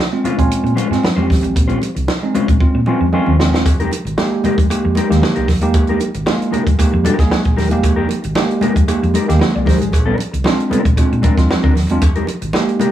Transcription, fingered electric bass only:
0.24 muted fingered electric bass stroke
0.38 A#1
0.51 muted fingered electric bass stroke
0.64 A#2
0.91 G#2
1.16 F2
1.30 G#1
1.43 A1
1.56 A#1
1.96 C2
2.34 muted fingered electric bass stroke
2.48 A#1
2.60 muted fingered electric bass stroke
2.75 A#2
3.00 F2
3.27 D#2
3.53 E1
3.66 F1
4.05 G#1
4.44 muted fingered electric bass stroke
4.58 F1
4.71 muted fingered electric bass stroke
4.85 F2
5.10 D#2
5.37 C2
5.48 D#1
5.62 E1
5.74 F1
6.15 G#1
6.53 muted fingered electric bass stroke
6.67 F1
6.78 muted fingered electric bass stroke
6.93 F2
7.19 C2
7.46 A#1
7.58 D#1
7.72 E1
7.84 F1
8.25 G#1
8.63 muted fingered electric bass stroke
8.76 F1
8.89 muted fingered electric bass stroke
9.03 F2
9.29 D#2
9.56 C2
9.67 G#1
9.81 A1
9.93 A#1
10.33 C2
10.71 muted fingered electric bass stroke
10.85 A#1
11.12 A#2
11.38 F2
11.64 D2
11.76 D#1
11.90 E1
12.02 F1
12.42 G#1
12.80 muted fingered electric bass stroke

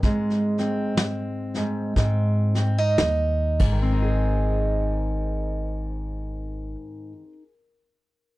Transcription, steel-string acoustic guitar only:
Already playing: C4
0.04 G#2 G#3
0.59 C4
0.98 muted steel-string acoustic guitar stroke
1.57 G#2
1.98 G#2 C4
2.55 C4
2.78 D#4
3.00 muted steel-string acoustic guitar stroke
3.62 G#2
3.72 D#3
3.82 C4
3.93 D#4
4.02 G#4

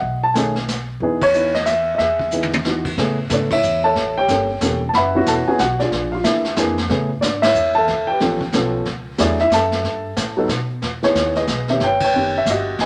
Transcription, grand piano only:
Already playing: D#5 F#5
0.24 A5
0.34 D#3 A3 C#4 G#4 D#5 G#5
1.02 E3 B3 D#4 G#4
1.23 C#5
1.35 E3 B3 D#4 B4
1.55 D#5
1.66 E5
1.95 D#5 E5
2.01 G#4
2.33 E3 B3 D#4 G#4
2.65 E3 B3 D#4 F#4
2.98 C#3 A3 B3 G#4
3.30 C#3 A3 B3 D4 A4 D5
3.53 E4 C#5 E5
3.84 A4 C#5 E5 A5
4.17 G4 C#5 G5
4.29 G3 A#3 C#4 A4
4.61 G3 A#3 C#4 A4
4.89 A5
4.95 B4 E5 F#5 B5
5.15 E3 B3 C#4 F#4
5.28 A4 A5
5.47 E3 B3 C#4 F#4 G#4 G#5
5.60 F#4 F#5
5.79 D4 F4 G#4 D5
6.12 F4 F5
6.24 E3 A#3 D4 E4 G#4 E5
6.57 E3 A#3 D4 G#4
6.89 C#3 A3 B3 G#4
7.21 D4 D5
7.42 E4 C#5 E5
7.75 A4 E5 F5 A5
8.07 G5
8.12 G4 B4
8.21 F3 B3 C#4 A4
8.53 F3 B3 C#4 A4
9.18 F#3 A3 E4 G#4 D5
9.22 D4
9.41 E4 E5
9.54 A4 E5 A5
10.37 F#3 B3 D#4 A4
11.03 E3 B3 D#4 G#4 C#5
11.37 G#4 B4 D#5
11.69 D#3 B3 C#4 G4 E5
11.84 B4 C#5 G5
12.04 B4 C#5 G5
12.14 D#3 B3 C#4 G4
12.38 E5
12.50 F#4 G4 D#5
12.81 B4 D#5 G#5

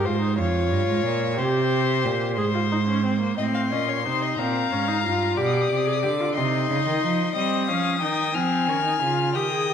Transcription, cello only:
0.05 G#2
0.38 F2
0.71 G2
0.88 G#2
1.05 A#2
1.38 C3
2.04 A#2
2.37 G#2
3.38 A2
3.72 A#2
4.06 C3
4.39 A#2
4.72 G#2
5.05 G2
5.38 B2
5.71 C3
6.04 D3
6.37 C3
6.69 C#3
6.86 D#3
7.03 F3
7.36 G3
7.69 F3
8.02 D#3
8.34 F3
8.67 D#3
9.00 C#3
9.35 D#3

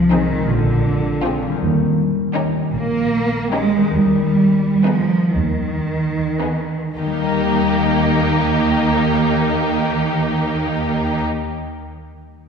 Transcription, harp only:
Already playing: C3 G#3 C4 D#4
0.32 A#2
0.36 G#3
0.41 C4
0.46 F4
1.42 D#3
1.47 G3
1.51 C#4
1.56 D#4
3.77 D#3
3.81 G#3
3.86 B3
3.90 D#4
6.98 D#3
7.06 G3
7.12 A#3
7.19 D#4
7.26 A#4

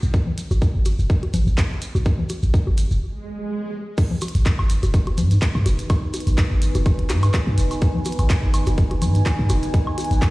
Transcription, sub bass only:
0.03 B1
0.51 G#1
0.75 G#1
0.99 F#1
1.34 G#1
1.47 G#1
1.95 B1
2.43 G#1
2.67 G#1
2.91 F#1
4.35 G#1
4.59 G#1
4.83 F#1
5.18 G#2
5.55 G#2
5.66 F#1
6.27 G#1
6.51 G#1
6.75 F#1
7.10 G#2
7.47 G#2
7.58 F#1
8.19 G#1
8.43 G#1
8.67 F#1
9.02 G#2
9.39 G#2
9.50 F#1
10.11 G#1

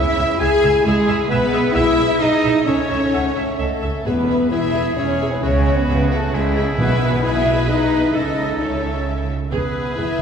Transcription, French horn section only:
Already playing: E4
0.41 G#4
0.85 G#3
1.29 B3
1.74 E4
2.21 D#4
2.66 C#4
3.60 A3
4.05 B3
4.50 E4
4.97 C#4
5.32 B3
5.42 C#4
5.77 B3
6.11 A3
6.33 G#3
6.80 B3
7.23 E4
7.69 D#4
8.13 D#4
8.60 C#4
9.52 B3
9.96 E4

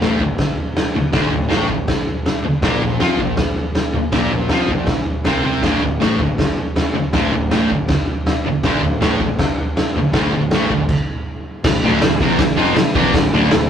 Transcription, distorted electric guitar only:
0.02 A2 A3
0.20 D2
0.95 muted distorted electric guitar stroke
1.13 D2 D3
1.31 D2
1.49 A2 A3
1.69 D2
2.44 muted distorted electric guitar stroke
2.63 A#2 A#3
2.81 A#2
3.00 F3 F4
3.18 A#2
3.95 muted distorted electric guitar stroke
4.13 A#2 A#3
4.33 A#2
4.51 F3 F4
4.71 A#2
5.26 C3 C4
5.44 C3 C4
5.63 D2 D3
5.82 D2
6.00 A2 A3
6.20 D2
6.94 muted distorted electric guitar stroke
7.13 D2 D3
7.33 D2
7.51 A2 A3
7.69 D2
8.46 muted distorted electric guitar stroke
8.64 D2 D3
8.82 D2
9.01 A2 A3
9.21 D2
9.97 muted distorted electric guitar stroke
10.14 D2 D3
10.35 D2
10.54 A2 A3
10.72 D2
11.65 D2
11.83 D2 D3
12.02 D2
12.21 E2 E3
12.40 muted distorted electric guitar stroke
12.57 F2 F3
12.75 muted distorted electric guitar stroke
12.95 E2 E3
13.16 D2
13.33 D2 D3
13.52 D2

